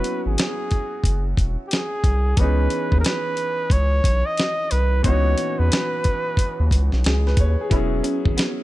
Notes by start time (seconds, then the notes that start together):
Already playing: F#3 B3 C#4 E4 F#4 B4
0.04 closed hi-hat
0.26 G#1 G#4
0.38 snare, closed hi-hat
0.71 kick, closed hi-hat
1.04 F#1, kick, closed hi-hat
1.37 E1, kick, closed hi-hat
1.67 G4, closed hi-hat
1.73 G#4, snare
2.04 C2, kick, closed hi-hat
2.36 C#2 E3 B3 C#4 B4, kick, closed hi-hat
2.41 D#4 G#4
2.70 closed hi-hat
2.92 D#2, kick
3.00 A#4
3.05 B4, snare, closed hi-hat
3.37 closed hi-hat
3.70 C#2 C#5, kick, closed hi-hat
4.04 B1, kick, closed hi-hat
4.26 D#5
4.38 snare, closed hi-hat
4.71 C2 B4, closed hi-hat
5.03 C#2 E3 B3 C#4 C#5, kick, closed hi-hat
5.07 D#4 F#4
5.38 closed hi-hat
5.59 E2 B4
5.72 snare, closed hi-hat
6.04 kick, closed hi-hat
6.37 kick, closed hi-hat
6.60 D#2
6.71 C#2, kick, closed hi-hat
6.92 B1, snare
7.04 C#2 G#4, snare, closed hi-hat
7.27 B4, snare
7.37 D#2 C#5, kick, closed hi-hat
7.61 G#4
7.70 E1 F#3 B3 C#4 E4, kick, closed hi-hat
7.74 E4 G#4
8.04 C#4, closed hi-hat
8.26 G#1, kick
8.37 B3, snare, closed hi-hat